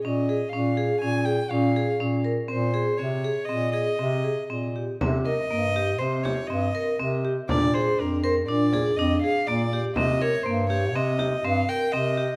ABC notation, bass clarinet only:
X:1
M:5/4
L:1/8
Q:1/4=122
K:Cphr
V:1 name="Bass clarinet" clef=bass
B,,2 B,,2 B,,2 B,,2 B,,2 | B,,2 C,2 B,,2 C,2 B,,2 | C,2 G,,2 C,2 G,, z C,2 | B,,2 F,,2 B,,2 F,, z B,,2 |
C,2 G,,2 C,2 G,, z C,2 |]